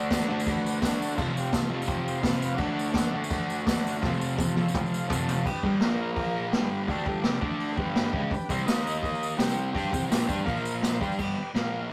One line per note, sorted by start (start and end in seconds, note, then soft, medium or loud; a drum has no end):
0.00 0.28 D3 loud
0.00 0.30 A3 medium
0.00 0.27 D4 loud
0.10 0.42 D4 medium
0.10 0.42 F#4 medium
0.10 0.42 A4 loud
0.10 kick loud
0.10 snare loud
0.10 tambourine medium
0.10 crash medium
0.22 tambourine soft
0.28 0.80 D3 medium
0.28 0.84 A3 medium
0.28 0.81 D4 medium
0.40 tambourine medium
0.46 0.79 D4 medium
0.46 0.79 F#4 medium
0.46 kick loud
0.46 crash medium
0.51 0.80 B4 loud
0.66 tambourine medium
0.77 tambourine soft
0.81 1.17 D3 loud
0.81 1.19 A3 medium
0.81 1.13 D4 medium
0.81 1.14 F#4 medium
0.81 kick loud
0.81 snare loud
0.81 crash medium
0.85 1.19 D4 loud
0.85 1.15 A4 medium
0.85 tambourine loud
1.02 tambourine medium
1.16 1.70 F2 medium
1.16 1.71 C3 medium
1.16 1.69 F3 loud
1.16 1.32 C4 loud
1.16 1.32 F4 loud
1.16 1.33 A4 loud
1.16 kick loud
1.16 crash medium
1.37 1.51 C4 medium
1.37 1.52 F4 medium
1.37 1.53 G4 loud
1.37 tambourine medium
1.46 tambourine soft
1.52 1.83 C4 medium
1.52 1.84 F4 medium
1.52 1.84 A4 loud
1.52 kick loud
1.52 snare loud
1.52 tambourine loud
1.52 crash medium
1.70 2.22 F2 medium
1.70 2.24 C3 medium
1.70 2.23 F3 medium
1.82 tambourine medium
1.87 2.19 C4 loud
1.87 2.19 F4 medium
1.87 2.19 G4 medium
1.87 kick loud
1.87 crash medium
2.07 2.24 C6 medium
2.07 tambourine medium
2.21 2.59 F2 medium
2.21 2.54 C4 medium
2.21 2.54 F4 medium
2.21 2.55 B4 loud
2.21 2.41 A5 medium
2.21 kick loud
2.21 snare loud
2.21 crash medium
2.25 2.58 C3 medium
2.25 2.60 F3 loud
2.25 tambourine medium
2.40 2.58 F5 medium
2.40 tambourine medium
2.54 2.71 D4 loud
2.54 2.72 F#4 loud
2.54 crash medium
2.58 3.12 D3 loud
2.58 3.14 A3 loud
2.58 2.73 A4 loud
2.58 kick loud
2.62 3.11 D4 loud
2.72 2.90 D4 medium
2.72 2.91 F#4 medium
2.72 2.91 A4 medium
2.79 tambourine medium
2.88 3.24 D4 medium
2.88 tambourine soft
2.93 3.25 F#4 medium
2.93 3.25 A4 loud
2.93 kick loud
2.93 snare loud
2.93 crash medium
2.98 tambourine loud
3.07 tambourine soft
3.12 3.65 D3 medium
3.12 3.67 A3 loud
3.12 3.66 D4 medium
3.24 tambourine medium
3.28 3.60 D4 medium
3.28 3.61 F#4 medium
3.28 3.61 A4 medium
3.28 kick loud
3.28 crash medium
3.50 tambourine medium
3.65 4.01 D3 medium
3.65 4.03 A3 medium
3.65 3.97 D4 medium
3.65 3.97 F#4 medium
3.65 3.97 A4 loud
3.65 kick loud
3.65 snare loud
3.65 tambourine medium
3.65 crash medium
3.70 4.03 D4 loud
3.87 tambourine medium
4.00 4.55 F2 loud
4.00 4.17 C4 loud
4.00 4.17 F4 loud
4.00 4.18 A4 loud
4.00 kick loud
4.00 snare medium
4.04 4.56 C3 loud
4.04 4.55 F3 loud
4.04 tambourine soft
4.14 tambourine soft
4.18 4.35 C4 medium
4.18 4.36 F4 medium
4.18 4.36 A4 medium
4.18 tambourine medium
4.32 tambourine soft
4.37 4.68 C4 medium
4.37 4.68 F4 medium
4.37 4.69 A4 loud
4.37 kick loud
4.37 high tom medium
4.37 tambourine medium
4.50 tambourine soft
4.56 5.10 C3 medium
4.56 5.09 F3 medium
4.56 high tom medium
4.56 tambourine soft
4.60 5.08 F2 medium
4.68 tambourine medium
4.75 5.05 C4 medium
4.75 5.06 F4 medium
4.75 5.06 A4 loud
4.75 kick loud
4.75 mid tom medium
4.75 tambourine soft
4.86 tambourine soft
4.93 5.09 F5 medium
4.93 tambourine medium
5.05 5.39 C4 medium
5.05 tambourine soft
5.09 5.44 F2 medium
5.09 5.45 C3 medium
5.09 5.40 F4 medium
5.09 5.40 A4 medium
5.09 5.43 A5 medium
5.09 kick loud
5.09 floor tom loud
5.09 tambourine medium
5.14 5.47 F3 medium
5.22 tambourine soft
5.28 floor tom loud
5.28 tambourine medium
5.45 5.76 D4 loud
5.45 5.76 G4 medium
5.45 5.76 B4 loud
5.45 kick loud
5.45 crash loud
5.63 5.81 G2 loud
5.63 5.81 D3 medium
5.63 5.81 G3 loud
5.63 kick loud
5.80 6.53 A#2 medium
5.80 6.54 F3 loud
5.80 6.11 A#3 medium
5.80 6.54 A#3 loud
5.80 6.12 F4 medium
5.80 6.12 A#4 loud
5.80 snare loud
5.80 open hi-hat medium
6.13 6.46 A#3 medium
6.13 6.46 F4 medium
6.13 6.47 A#4 medium
6.13 kick loud
6.13 open hi-hat medium
6.52 6.88 G2 medium
6.52 6.87 D3 loud
6.52 6.89 G3 loud
6.52 6.83 D4 medium
6.52 6.83 G4 medium
6.52 6.84 B4 medium
6.52 snare loud
6.52 open hi-hat medium
6.87 7.05 D3 loud
6.87 7.06 A3 loud
6.87 7.19 D4 medium
6.87 7.07 D4 loud
6.87 7.19 G4 medium
6.87 7.20 A4 loud
6.87 kick loud
6.87 open hi-hat medium
7.06 7.23 G2 medium
7.06 7.24 D3 loud
7.06 7.24 G3 loud
7.06 kick loud
7.20 7.42 F2 loud
7.20 7.38 D4 medium
7.20 7.41 G4 medium
7.20 7.41 D5 medium
7.20 snare loud
7.20 open hi-hat medium
7.25 7.40 C3 loud
7.25 7.41 F3 loud
7.39 7.76 D3 medium
7.39 7.77 A3 medium
7.39 7.71 D4 medium
7.39 7.78 D4 loud
7.39 7.72 A4 medium
7.39 7.73 D5 medium
7.39 kick loud
7.60 open hi-hat medium
7.76 8.13 G2 medium
7.76 8.13 D3 medium
7.76 8.13 G3 loud
7.76 8.23 D4 medium
7.76 8.23 G4 medium
7.76 8.24 B4 loud
7.76 kick loud
7.95 snare loud
7.95 open hi-hat medium
8.13 8.31 C#3 medium
8.13 8.31 G#3 loud
8.13 8.32 C#4 loud
8.13 kick loud
8.30 8.49 D4 medium
8.30 8.48 G4 medium
8.30 8.50 B4 loud
8.30 kick loud
8.30 open hi-hat medium
8.30 tambourine soft
8.49 8.66 C3 loud
8.49 8.67 G3 medium
8.49 8.66 C4 medium
8.49 8.68 C4 loud
8.49 8.65 G4 medium
8.49 8.65 C5 loud
8.49 kick loud
8.49 tambourine medium
8.60 tambourine soft
8.66 9.38 D#3 loud
8.66 9.38 A#3 loud
8.66 8.97 D#4 medium
8.66 9.39 D#4 loud
8.66 8.98 A#4 medium
8.66 8.98 D#5 loud
8.66 snare loud
8.66 open hi-hat medium
8.66 tambourine loud
8.87 tambourine medium
9.02 9.34 D#4 medium
9.02 9.35 A#4 medium
9.02 9.35 D#5 loud
9.02 kick loud
9.02 open hi-hat medium
9.02 tambourine soft
9.15 tambourine soft
9.23 tambourine medium
9.38 9.74 C3 loud
9.38 9.72 G3 loud
9.38 9.74 C4 loud
9.38 9.69 G4 medium
9.38 9.71 C5 medium
9.38 9.70 G5 medium
9.38 snare loud
9.38 open hi-hat medium
9.38 tambourine loud
9.49 tambourine medium
9.73 9.91 G3 medium
9.73 9.93 D4 loud
9.73 10.05 G4 medium
9.73 9.93 G4 loud
9.73 10.05 C5 medium
9.73 10.06 G5 medium
9.73 kick loud
9.73 open hi-hat medium
9.78 tambourine soft
9.92 10.10 C3 loud
9.92 10.10 G3 loud
9.92 10.11 C4 loud
9.92 kick loud
9.92 tambourine medium
10.10 10.28 A#2 loud
10.10 10.27 F3 loud
10.10 10.28 A#3 loud
10.10 10.42 G4 medium
10.10 10.41 C5 medium
10.10 10.42 A5 loud
10.10 snare loud
10.10 open hi-hat medium
10.10 tambourine loud
10.28 10.46 G3 loud
10.28 10.46 D4 loud
10.28 10.47 G4 loud
10.28 kick loud
10.28 tambourine medium
10.39 tambourine soft
10.44 11.00 A#2 loud
10.44 11.00 F3 loud
10.44 11.01 A#3 loud
10.44 10.76 F4 medium
10.44 10.76 A#4 medium
10.44 10.77 F5 loud
10.44 kick loud
10.44 open hi-hat medium
10.48 tambourine soft
10.57 tambourine soft
10.65 tambourine medium
10.81 11.00 F4 medium
10.81 11.00 A#4 medium
10.81 10.99 C5 loud
10.81 snare loud
10.81 open hi-hat medium
10.85 tambourine loud
10.99 11.18 G3 medium
10.99 11.19 D4 loud
10.99 11.16 G4 medium
10.99 11.19 G4 loud
10.99 11.16 C5 medium
10.99 11.17 G5 medium
10.99 kick loud
10.99 tambourine soft
11.12 tambourine soft
11.19 11.37 G2 medium
11.19 11.37 D3 loud
11.19 11.37 G3 loud
11.19 11.50 G4 medium
11.19 11.51 B4 medium
11.19 11.52 D5 medium
11.19 kick medium
11.19 crash loud
11.38 muted distorted electric guitar stroke medium
11.54 11.91 A#2 medium
11.54 11.91 F3 loud
11.54 11.91 A#3 loud
11.54 11.87 F4 medium
11.54 11.86 A#4 medium
11.54 11.87 F5 medium
11.54 snare loud
11.54 open hi-hat medium